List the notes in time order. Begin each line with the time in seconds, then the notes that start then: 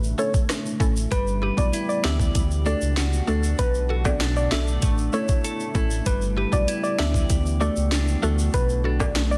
Already playing: A1 A3
0.03 shaker
0.18 A3 C#4 E4 A4 C#5, shaker
0.34 kick, shaker
0.50 cross-stick, snare, closed hi-hat, shaker
0.66 shaker
0.80 A1 A3 C#4 E4 A4, kick, shaker
0.96 shaker
1.11 G1 G3 B4, kick, closed hi-hat, shaker
1.27 shaker
1.42 E4 G4 B4
1.57 B1 B3 D4 E4 F#4 D5, kick, shaker
1.73 E4, closed hi-hat, shaker
1.89 D5, shaker
2.04 D2 B3 D4 E4 G4 D5 E5, snare, shaker
2.20 kick, shaker
2.35 D2 A3, kick, closed hi-hat, shaker
2.51 shaker
2.66 A3 D4 F#4 A4 D5, shaker
2.81 C#2, shaker
2.97 F#4, snare, closed hi-hat, shaker
3.13 shaker
3.27 D2 A3 D4 F#4 A4, shaker
3.44 shaker
3.59 B1 B2 B4, kick, closed hi-hat, shaker
3.74 shaker
3.89 F#4 A4
4.05 B3 D4 F#4 A4 D5, kick, high timbale, shaker
4.21 D4, snare, closed hi-hat, shaker
4.36 D5, shaker
4.51 B1 B3 D4 F#4 A4 D5 E5, snare, shaker
4.67 shaker
4.82 A1 A3, kick, closed hi-hat, shaker
4.98 shaker
5.13 A3 C#4 E4 A4 C#5, shaker
5.28 kick, shaker
5.44 A4, closed hi-hat, shaker
5.60 shaker
5.75 A1 A3 C#4 E4 A4, kick, shaker
5.91 shaker
6.06 G1 G3 B4, kick, closed hi-hat, shaker
6.21 shaker
6.37 E4 G4 B4
6.52 B1 B3 D4 E4 F#4 D5, kick, shaker
6.68 E4, closed hi-hat, shaker
6.83 D5, shaker
6.98 D2 B3 D4 E4 G4 D5 E5, snare, shaker
7.14 kick, shaker
7.30 D2 A3, kick, closed hi-hat, shaker
7.46 shaker
7.60 A3 D4 F#4 A4 D5, shaker
7.76 C#2, shaker
7.92 D4, snare, closed hi-hat, shaker
8.08 shaker
8.22 D2 A3 D4 F#4 A4, shaker
8.39 shaker
8.54 B1 B2 B4, kick, closed hi-hat, shaker
8.69 shaker
8.84 D4 F#4 A4
9.00 B3 D4 F#4 A4 D5, kick, high timbale, shaker
9.16 A3, snare, closed hi-hat, shaker
9.31 D5, shaker